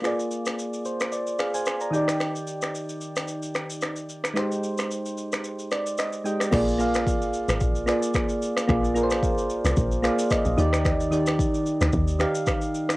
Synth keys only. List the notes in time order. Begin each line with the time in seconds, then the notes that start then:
0.02 A#3 F4 G#4
0.07 D5
0.85 C5
1.12 D5
1.39 G#4 F5
1.54 C5 G#5
1.66 G#5
1.81 D5 A#5
1.91 D#3 D#4 G4 G5
1.95 D5
4.34 G#3 D#4 G4
4.39 C5
5.71 D5
5.99 D#5
6.24 G#3 D#4 G4 D#5 G5
6.51 A#3 F4 G#4 D5
6.78 A#3 F4 G#4 F5
7.86 A#3 F4 G#4 D5
8.68 A#3 F4 G#4 D5
8.94 A#3 F4 G#4 A#4
9.03 C5
10.03 A#3 F4 G#4 D5 F5
10.31 D#5
10.57 D#3 D#4 G4 D5
11.11 D#3 D#4 G4 D5
12.19 D#3 D#4 G4 F5